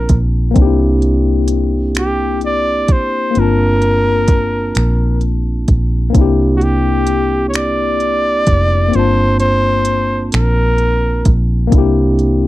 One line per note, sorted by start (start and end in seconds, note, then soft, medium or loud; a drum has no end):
0.00 0.50 A#3 medium
0.00 0.51 C4 soft
0.00 0.52 D4 soft
0.00 0.54 F4 medium
0.00 0.19 A#4 medium
0.00 0.55 A5 medium
0.09 0.52 A#1 medium
0.09 kick medium
0.09 closed hi-hat medium
0.51 3.28 A#3 medium
0.51 3.30 C4 medium
0.56 2.90 C2 medium
0.56 3.31 D4 medium
0.56 0.64 D#4 medium
0.56 kick medium
0.56 closed hi-hat medium
0.62 3.34 G4 medium
0.66 3.36 E4 medium
1.02 closed hi-hat soft
1.48 closed hi-hat medium
1.95 finger snap medium
1.95 closed hi-hat medium
1.99 2.41 G4 medium
2.41 closed hi-hat soft
2.46 2.94 D5 medium
2.88 3.31 F1 medium
2.88 3.41 C5 medium
2.88 kick medium
2.88 closed hi-hat medium
3.31 6.08 A#3 medium
3.31 6.09 C4 soft
3.35 4.71 G1 medium
3.35 6.11 D4 soft
3.35 6.12 F4 soft
3.35 closed hi-hat medium
3.39 5.23 A#4 loud
3.39 6.13 A5 medium
3.82 closed hi-hat soft
4.28 kick medium
4.28 closed hi-hat medium
4.75 5.64 A#1 medium
4.75 finger snap medium
4.75 closed hi-hat medium
5.21 closed hi-hat soft
5.68 6.11 A#1 medium
5.68 kick medium
5.68 closed hi-hat medium
6.10 8.87 A#3 medium
6.10 8.88 C4 medium
6.14 8.49 C2 medium
6.14 8.90 D4 medium
6.14 8.91 E4 medium
6.14 kick medium
6.14 closed hi-hat medium
6.21 8.93 G4 medium
6.57 6.65 F#4 medium
6.61 7.48 G4 medium
6.61 closed hi-hat soft
7.07 closed hi-hat medium
7.49 7.57 C#5 medium
7.54 8.97 D5 loud
7.54 finger snap medium
7.54 closed hi-hat medium
8.00 closed hi-hat soft
8.47 8.90 F1 medium
8.47 kick medium
8.47 closed hi-hat medium
8.88 11.66 A#3 medium
8.88 11.67 C4 soft
8.93 10.30 G1 medium
8.93 11.68 D4 soft
8.93 11.70 F4 soft
8.93 9.39 C5 medium
8.93 closed hi-hat medium
8.99 11.71 A5 medium
9.40 10.29 C5 medium
9.40 closed hi-hat soft
9.85 closed hi-hat medium
10.32 11.22 A#1 medium
10.32 11.34 A#4 medium
10.32 finger snap medium
10.32 closed hi-hat medium
10.78 closed hi-hat soft
11.25 11.68 A#1 medium
11.25 kick medium
11.25 closed hi-hat medium
11.67 12.47 A#3 medium
11.67 12.47 C4 medium
11.72 12.47 C2 medium
11.72 12.47 D4 medium
11.72 12.47 E4 medium
11.72 kick loud
11.72 closed hi-hat medium
11.78 12.47 G4 medium
12.19 closed hi-hat soft